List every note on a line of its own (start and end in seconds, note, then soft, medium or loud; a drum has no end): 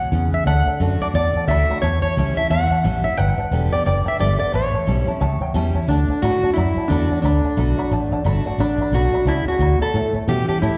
0.00 0.11 B2 medium
0.00 0.29 F#5 medium
0.12 0.32 E2 loud
0.12 0.46 C#3 medium
0.33 0.47 E5 medium
0.33 muted fretless electric bass stroke medium
0.46 0.65 D2 medium
0.46 0.79 D3 medium
0.46 0.59 D5 loud
0.46 0.59 F#5 medium
0.46 0.79 F#5 loud
0.46 0.59 A5 loud
0.66 0.75 D5 medium
0.66 0.76 F#5 medium
0.66 0.76 A5 medium
0.66 muted fretless electric bass stroke medium
0.80 1.00 F#2 loud
0.80 1.00 D3 medium
0.80 1.00 A3 medium
0.80 1.01 D4 medium
0.80 0.99 F#4 medium
0.80 0.93 D5 medium
0.80 0.94 F#5 medium
0.80 0.94 A5 medium
1.00 1.15 D4 medium
1.00 1.14 F#4 medium
1.00 1.07 D5 medium
1.00 1.10 D5 medium
1.00 1.10 F#5 medium
1.00 1.10 A5 medium
1.00 muted fretless electric bass stroke medium
1.14 1.33 E2 medium
1.14 1.80 A2 medium
1.14 1.48 D5 medium
1.14 1.27 D5 medium
1.14 1.27 F#5 medium
1.14 1.28 A5 loud
1.34 1.44 D5 medium
1.34 1.44 F#5 medium
1.34 1.44 A5 medium
1.34 muted fretless electric bass stroke medium
1.48 1.67 D2 loud
1.48 1.68 D3 loud
1.48 1.68 A3 medium
1.48 1.68 D4 medium
1.48 1.69 F#4 loud
1.48 1.61 D5 medium
1.48 1.81 E5 medium
1.48 1.62 F#5 medium
1.48 1.62 B5 medium
1.70 1.83 D4 soft
1.70 1.82 F#4 medium
1.70 1.78 D5 medium
1.70 1.78 F#5 medium
1.70 1.78 B5 medium
1.82 2.02 E2 medium
1.82 2.48 A2 medium
1.82 2.01 C#5 medium
1.82 1.95 C#5 loud
1.82 1.95 E5 medium
1.82 1.95 A5 loud
2.02 2.37 C#5 medium
2.02 2.12 C#5 medium
2.02 2.12 E5 medium
2.02 2.12 A5 medium
2.02 muted fretless electric bass stroke medium
2.16 2.36 C#2 medium
2.16 2.36 E3 medium
2.16 2.36 G3 medium
2.16 2.37 C#4 medium
2.16 2.36 E4 loud
2.16 2.29 C#5 medium
2.16 2.29 E5 medium
2.16 2.29 A5 medium
2.37 2.51 C#4 soft
2.37 2.50 E4 medium
2.37 2.45 C#5 medium
2.37 2.50 E5 medium
2.37 2.46 E5 medium
2.37 2.46 A5 medium
2.37 muted fretless electric bass stroke medium
2.50 2.70 E2 medium
2.50 3.16 E2 medium
2.50 2.62 C#5 medium
2.50 2.63 E5 medium
2.50 3.04 F#5 loud
2.50 2.63 A5 loud
2.71 2.79 C#5 medium
2.71 2.79 E5 medium
2.71 2.79 A5 medium
2.71 muted fretless electric bass stroke medium
2.84 3.04 A1 loud
2.84 3.03 E3 loud
2.84 3.04 G3 loud
2.84 3.04 C#4 loud
2.84 3.03 E4 loud
2.84 2.96 C#5 medium
2.84 2.97 E5 medium
2.84 2.97 A5 medium
3.04 3.18 C#4 medium
3.04 3.17 E4 medium
3.04 3.13 C#5 medium
3.04 3.18 E5 medium
3.04 3.13 E5 medium
3.04 3.13 F#5 medium
3.04 muted fretless electric bass stroke medium
3.18 3.37 G1 medium
3.18 3.83 G2 medium
3.18 3.30 B4 loud
3.18 3.30 D5 medium
3.18 3.52 F#5 loud
3.18 3.30 G5 loud
3.38 3.46 B4 medium
3.38 3.46 D5 medium
3.38 3.47 A5 medium
3.38 muted fretless electric bass stroke medium
3.51 3.71 E1 medium
3.51 3.71 D3 medium
3.51 3.71 G3 medium
3.51 3.72 B3 loud
3.51 3.72 G4 medium
3.51 3.64 B4 medium
3.51 3.64 D5 medium
3.51 3.64 G5 medium
3.72 3.86 B3 medium
3.72 3.86 G4 medium
3.72 3.80 B4 medium
3.72 3.85 D5 medium
3.72 3.81 D5 medium
3.72 3.81 G5 medium
3.72 muted fretless electric bass stroke medium
3.86 4.05 F#1 loud
3.86 4.18 D3 medium
3.86 3.98 B4 medium
3.86 4.08 D5 medium
3.86 3.98 D5 medium
3.86 3.98 G5 loud
4.05 4.14 B4 medium
4.05 4.14 D5 medium
4.05 4.20 E5 medium
4.05 4.14 G5 loud
4.05 muted fretless electric bass stroke medium
4.19 4.40 G1 loud
4.19 4.39 D3 medium
4.19 4.39 G3 medium
4.19 4.39 B3 loud
4.19 4.39 G4 loud
4.19 4.31 B4 medium
4.19 4.31 D5 medium
4.19 4.38 D5 medium
4.19 4.32 G5 medium
4.39 4.54 B3 soft
4.39 4.53 G4 medium
4.39 4.48 B4 medium
4.39 4.54 D5 medium
4.39 4.48 D5 medium
4.39 4.48 F#5 medium
4.39 muted fretless electric bass stroke medium
4.53 4.73 A1 medium
4.53 5.18 A2 medium
4.53 4.65 C#5 medium
4.53 5.52 C#5 medium
4.53 4.65 E5 medium
4.53 4.66 A5 loud
4.74 4.82 C#5 medium
4.74 4.82 E5 medium
4.74 4.82 A5 medium
4.74 muted fretless electric bass stroke medium
4.87 5.07 B1 medium
4.87 5.06 E3 medium
4.87 5.07 G3 medium
4.87 5.07 C#4 medium
4.87 5.06 E4 medium
4.87 4.99 C#5 medium
4.87 4.99 E5 medium
4.87 5.00 A5 medium
5.07 5.21 C#4 soft
5.07 5.20 E4 medium
5.07 5.15 C#5 medium
5.07 5.15 E5 medium
5.07 5.16 A5 loud
5.07 muted fretless electric bass stroke medium
5.20 5.40 C#2 medium
5.20 5.86 E2 medium
5.20 5.33 C#5 loud
5.20 5.33 E5 loud
5.20 5.40 G5 medium
5.20 5.33 A5 loud
5.41 5.49 C#5 medium
5.41 5.49 E5 medium
5.41 5.54 F#5 medium
5.41 5.50 G5 loud
5.41 muted fretless electric bass stroke medium
5.54 5.74 E2 loud
5.54 5.74 E3 medium
5.54 5.74 G3 loud
5.54 5.74 C#4 medium
5.54 5.74 E4 loud
5.54 5.67 C#5 medium
5.54 5.67 E5 medium
5.54 5.74 G5 medium
5.54 5.67 A5 loud
5.75 5.89 C#4 soft
5.75 5.88 E4 medium
5.75 5.83 C#5 medium
5.75 5.83 E5 medium
5.75 5.83 A5 loud
5.75 muted fretless electric bass stroke medium
5.88 6.08 D2 medium
5.88 6.21 D3 medium
5.88 6.24 D4 medium
5.88 6.01 D5 loud
5.88 6.01 F#5 medium
5.88 6.01 A5 loud
6.08 6.18 D5 medium
6.08 6.18 F#5 medium
6.08 6.18 A5 medium
6.08 muted fretless electric bass stroke medium
6.22 6.42 A2 medium
6.22 6.42 D3 medium
6.22 6.42 A3 medium
6.22 6.42 D4 medium
6.22 6.53 F#4 loud
6.22 6.40 F#4 medium
6.22 6.35 D5 medium
6.22 6.35 F#5 medium
6.22 6.35 B5 medium
6.42 6.56 D4 soft
6.42 6.55 F#4 medium
6.42 6.51 D5 medium
6.42 6.52 F#5 medium
6.42 6.51 A5 medium
6.42 muted fretless electric bass stroke medium
6.54 6.76 F#2 medium
6.54 7.21 A2 medium
6.54 6.90 E4 medium
6.54 6.69 D5 medium
6.54 6.69 F#5 medium
6.58 6.69 B5 medium
6.76 6.85 D5 medium
6.76 6.85 F#5 medium
6.76 6.85 A5 medium
6.76 muted fretless electric bass stroke medium
6.88 7.09 E2 loud
6.88 7.09 D3 medium
6.88 7.09 A3 loud
6.88 7.20 D4 medium
6.88 7.10 D4 medium
6.88 7.09 F#4 loud
6.88 7.03 D5 medium
6.88 7.03 F#5 medium
6.88 7.03 B5 medium
7.10 7.24 D4 soft
7.10 7.23 F#4 medium
7.10 7.19 D5 medium
7.10 7.19 F#5 medium
7.10 7.19 A5 medium
7.10 muted fretless electric bass stroke medium
7.22 7.43 D2 medium
7.22 7.55 D3 medium
7.22 8.21 D4 medium
7.22 7.36 D5 medium
7.22 7.36 F#5 medium
7.22 7.37 B5 loud
7.44 7.53 D5 medium
7.44 7.53 F#5 medium
7.44 7.53 A5 medium
7.44 muted fretless electric bass stroke medium
7.57 7.77 B1 medium
7.57 7.77 D3 medium
7.57 7.77 A3 medium
7.57 7.77 D4 medium
7.57 7.76 F#4 medium
7.57 7.70 D5 medium
7.57 7.70 F#5 medium
7.57 7.70 B5 medium
7.78 7.92 D4 soft
7.78 7.91 F#4 medium
7.78 7.86 D5 medium
7.78 7.86 F#5 medium
7.78 7.86 B5 medium
7.78 muted fretless electric bass stroke medium
7.91 8.11 A1 medium
7.91 8.57 A2 medium
7.91 8.04 D5 loud
7.91 8.04 F#5 medium
7.91 8.04 A5 loud
8.12 8.20 D5 medium
8.12 8.20 F#5 medium
8.12 8.20 A5 loud
8.12 muted fretless electric bass stroke medium
8.24 8.44 G1 loud
8.24 8.44 D3 medium
8.24 8.45 A3 medium
8.24 8.45 D4 loud
8.24 8.44 F#4 loud
8.24 8.37 D5 medium
8.24 8.38 F#5 medium
8.24 8.38 B5 medium
8.45 8.59 D4 soft
8.45 8.59 F#4 medium
8.45 8.54 D5 medium
8.45 8.54 F#5 medium
8.45 8.54 A5 loud
8.45 muted fretless electric bass stroke medium
8.58 8.77 A1 medium
8.58 8.91 D3 medium
8.58 8.95 D4 medium
8.58 8.72 D5 loud
8.58 8.72 F#5 medium
8.58 8.72 B5 loud
8.78 8.88 D5 medium
8.78 8.88 F#5 medium
8.78 8.89 B5 medium
8.78 muted fretless electric bass stroke medium
8.92 9.12 B1 medium
8.92 9.12 D3 medium
8.92 9.13 A3 medium
8.92 9.13 D4 medium
8.92 9.11 F#4 loud
8.92 9.28 F#4 medium
8.92 9.06 D5 medium
8.92 9.06 F#5 medium
8.96 9.07 B5 medium
9.12 9.27 D4 soft
9.12 9.26 F#4 medium
9.12 9.22 D5 medium
9.12 9.22 F#5 medium
9.12 9.22 B5 medium
9.12 muted fretless electric bass stroke medium
9.25 9.45 C#2 loud
9.25 9.60 C#3 medium
9.25 9.48 E4 medium
9.25 9.39 D5 medium
9.25 9.39 F#5 medium
9.25 9.39 A5 loud
9.45 9.82 F#4 medium
9.45 9.56 D5 medium
9.45 9.56 F#5 medium
9.45 9.56 A5 medium
9.45 muted fretless electric bass stroke medium
9.59 9.79 D2 loud
9.59 9.93 B2 medium
9.59 9.73 D5 medium
9.59 9.73 F#5 medium
9.59 9.73 B5 medium
9.79 10.13 A4 loud
9.79 9.89 D5 medium
9.79 9.90 F#5 medium
9.79 9.90 B5 medium
9.79 muted fretless electric bass stroke medium
9.94 10.14 A2 loud
9.94 10.60 A2 medium
9.94 10.07 C#5 loud
9.94 10.07 E5 medium
9.94 10.07 A5 loud
10.15 10.23 C#5 medium
10.15 10.23 E5 medium
10.15 10.23 A5 medium
10.15 muted fretless electric bass stroke medium
10.28 10.48 B2 medium
10.28 10.61 E3 medium
10.28 10.61 G3 medium
10.28 10.62 C#4 medium
10.28 10.62 E4 medium
10.28 10.47 G4 loud
10.28 10.40 C#5 medium
10.28 10.41 E5 medium
10.28 10.41 F#5 medium
10.48 10.62 G4 medium
10.48 10.57 C#5 medium
10.48 10.57 E5 medium
10.48 10.57 A5 medium
10.48 muted fretless electric bass stroke medium
10.62 10.78 E2 medium
10.62 10.78 A2 medium
10.62 10.78 E4 medium
10.62 10.74 C#5 medium
10.62 10.75 E5 medium
10.62 10.75 A5 loud